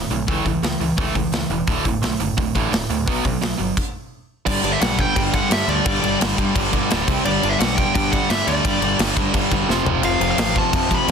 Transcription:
0.10 picked electric bass B1, overdriven electric guitar D2 A2, open hi-hat
0.27 picked electric bass C#2, overdriven electric guitar A2 E3 A3, kick, open hi-hat
0.45 picked electric bass C#2, overdriven electric guitar A2 E3, kick, open hi-hat
0.62 picked electric bass C#2, overdriven electric guitar A2 E3, snare, open hi-hat
0.79 picked electric bass C#2, overdriven electric guitar A2 E3, open hi-hat
0.97 picked electric bass C#2, overdriven electric guitar A2 E3 A3, kick, open hi-hat
1.14 picked electric bass C#2, overdriven electric guitar A2 E3, kick, open hi-hat
1.32 picked electric bass C#2, overdriven electric guitar A2 E3, snare, open hi-hat
1.50 picked electric bass E1, overdriven electric guitar A2 E3, open hi-hat
1.67 picked electric bass D1, overdriven electric guitar D2 A2 D3, kick, open hi-hat
1.85 picked electric bass D1, overdriven electric guitar D2 A2, kick, open hi-hat
2.01 picked electric bass B1, overdriven electric guitar D2 A2, snare, open hi-hat
2.19 picked electric bass F#1, overdriven electric guitar D2 A2, open hi-hat
2.37 picked electric bass D1, overdriven electric guitar D2 A2, kick, open hi-hat
2.55 picked electric bass A1, overdriven electric guitar D2 A2 D3, kick, open hi-hat
2.72 picked electric bass D1, overdriven electric guitar D2 A2, snare, open hi-hat
2.89 picked electric bass D2, overdriven electric guitar D2 A2, open hi-hat
3.07 picked electric bass B1, overdriven electric guitar B2 F#3 B3, kick, open hi-hat
3.25 picked electric bass B1, overdriven electric guitar B2 F#3, kick, open hi-hat
3.42 picked electric bass B1, overdriven electric guitar B2 F#3, snare, open hi-hat
3.59 picked electric bass G1, overdriven electric guitar B2 F#3, open hi-hat
3.77 kick, crash
4.46 picked electric bass G1, overdriven electric guitar G2 D3 G3, lead electric guitar D5, kick, crash
4.63 picked electric bass G1, overdriven electric guitar G2 D3 G3, crash
4.72 lead electric guitar E5
4.81 picked electric bass B1, overdriven electric guitar G2 D3 G3, lead electric guitar F#5, snare, crash
4.98 overdriven electric guitar G2 D3 G3, lead electric guitar G5, kick, crash
5.16 picked electric bass G2, overdriven electric guitar G2 D3 G3, lead electric guitar G5, kick, crash
5.33 overdriven electric guitar G2 D3 G3, lead electric guitar F#5, kick, crash
5.50 picked electric bass G2, overdriven electric guitar G2 D3 G3, lead electric guitar E5, snare, crash
5.68 picked electric bass D2, overdriven electric guitar G2 D3 G3, lead electric guitar D5, crash
5.86 picked electric bass G2, overdriven electric guitar G2 D3 G3, kick, crash
6.03 picked electric bass G1, overdriven electric guitar G2 D3 G3, crash
6.20 picked electric bass G1, overdriven electric guitar G2 D3 G3, snare, crash
6.38 overdriven electric guitar G2 D3 G3, picked electric bass G2, kick, crash
6.55 picked electric bass G1, overdriven electric guitar G2 D3 G3, kick, crash
6.72 picked electric bass G1, overdriven electric guitar G2 D3 G3, kick, crash
6.90 picked electric bass D1, overdriven electric guitar G2 D3 G3, snare, crash
7.07 picked electric bass C2, overdriven electric guitar C3 G3 C4, kick, crash
7.25 picked electric bass G1, overdriven electric guitar G2 D3 G3, lead electric guitar D5, crash
7.42 picked electric bass G1, overdriven electric guitar G2 D3 G3, crash
7.49 lead electric guitar E5
7.59 picked electric bass B1, overdriven electric guitar G2 D3 G3, lead electric guitar F#5, snare, crash
7.76 overdriven electric guitar G2 D3 G3, lead electric guitar G5, kick, crash
7.95 overdriven electric guitar G2 D3 G3, picked electric bass G2, lead electric guitar G5, kick, crash
8.12 overdriven electric guitar G2 D3 G3, lead electric guitar F#5, kick, crash
8.30 overdriven electric guitar G2 D3 G3, picked electric bass G2, lead electric guitar E5, snare, crash
8.47 picked electric bass D2, overdriven electric guitar G2 D3 G3, lead electric guitar D5, crash
8.64 overdriven electric guitar G2 D3 G3, picked electric bass G2, kick, crash
8.81 picked electric bass G1, overdriven electric guitar G2 D3 G3, crash
8.99 picked electric bass G1, overdriven electric guitar G2 D3 G3, snare, crash
9.16 overdriven electric guitar G2 D3 G3, picked electric bass G2, kick, crash
9.33 picked electric bass G1, overdriven electric guitar G2 D3 G3, kick, crash
9.51 picked electric bass G1, overdriven electric guitar G2 D3 G3, kick, crash
9.67 picked electric bass F1, overdriven electric guitar F2 C3 F3, snare
9.85 picked electric bass F1, overdriven electric guitar F2 C3 F3, floor tom
10.02 picked electric bass F1, overdriven electric guitar F2 C3 F3, lead electric guitar F5, crash
10.20 picked electric bass F1, overdriven electric guitar F2 C3 F3, crash
10.31 lead electric guitar F5
10.38 picked electric bass A1, overdriven electric guitar F2 C3 F3, snare, crash
10.55 overdriven electric guitar F2 C3 F3, lead electric guitar A5, kick, crash
10.73 overdriven electric guitar F2 C3 F3, picked electric bass F2, lead electric guitar A5, kick, crash
10.90 overdriven electric guitar F2 C3 F3, kick, crash
10.94 lead electric guitar B5
11.08 picked electric bass F2, overdriven electric guitar F2, distorted electric guitar C3

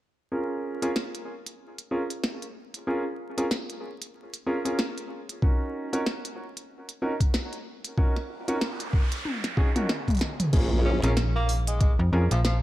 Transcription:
0.32 grand piano C#4 F4 G#4 A#4
0.82 grand piano C#4 F4 G#4 A#4, closed hi-hat
0.96 snare
1.15 closed hi-hat
1.46 closed hi-hat
1.78 closed hi-hat
1.91 grand piano C#4 F4 G#4 A#4
2.10 closed hi-hat
2.24 snare
2.42 closed hi-hat
2.74 closed hi-hat
2.87 grand piano C#4 F4 G#4 A#4
3.38 grand piano C#4 F4 G#4 A#4, closed hi-hat
3.51 snare
3.70 closed hi-hat
4.02 closed hi-hat
4.34 closed hi-hat
4.46 grand piano C#4 F4 G#4 A#4
4.65 grand piano C#4 F4 G#4 A#4, closed hi-hat
4.79 snare
4.98 closed hi-hat
5.29 closed hi-hat
5.42 grand piano C#4 D#4 F#4 A#4, kick
5.93 grand piano C#4 D#4 F#4 A#4, closed hi-hat
6.06 snare
6.25 closed hi-hat
6.57 closed hi-hat
6.89 closed hi-hat
7.02 grand piano C#4 D#4 F#4 A#4
7.20 kick, closed hi-hat
7.34 snare
7.53 closed hi-hat
7.84 closed hi-hat
7.97 grand piano C#4 D#4 F#4 A#4, kick, noise sweep
8.16 snare
8.48 grand piano C#4 D#4 F#4 A#4, closed hi-hat
8.61 snare
8.80 closed hi-hat
8.93 kick
9.12 closed hi-hat
9.25 high tom
9.44 snare, closed hi-hat
9.57 grand piano C#4 D#4 F#4 G#4, kick
9.76 grand piano C#4 D#4 F#4 A#4, closed hi-hat, mid tom
9.89 snare
10.08 kick, closed hi-hat, mid tom
10.10 closed hi-hat
10.15 closed hi-hat
10.17 closed hi-hat
10.19 snare, closed hi-hat
10.40 closed hi-hat, mid tom
10.53 wobble bass A#1, grand piano C#4 F4 G#4 A#4, kick, closed hi-hat, crash, impact
10.85 tenor saxophone C#4
11.03 fm bass A#1, grand piano C#4 F4 G#4 A#4, tenor saxophone C#4, snare, closed hi-hat
11.17 snare, closed hi-hat
11.36 tenor saxophone A#3
11.49 open hi-hat
11.67 tenor saxophone G#3, closed hi-hat
11.81 tenor saxophone G#3, kick, closed hi-hat
11.99 fm bass F2
12.13 fm bass F2, grand piano C#4 F4 G#4 A#4
12.31 fm bass A#1, tenor saxophone F3, closed hi-hat
12.45 tenor saxophone F3, snare, closed hi-hat

